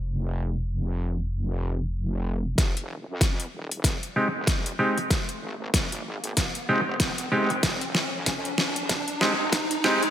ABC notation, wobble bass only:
X:1
M:4/4
L:1/16
Q:"Swing 16ths" 1/4=95
K:Fm
V:1 name="Wobble bass" clef=bass
F,,,16 | F,,,3 F,,3 E,,,2 F,,, z2 E,,,3 z2 | z2 A,,,6 z2 F,,,4 F,,,2 | F,,,3 F,,3 E,,,2 F,,, z2 E,,,3 z2 |]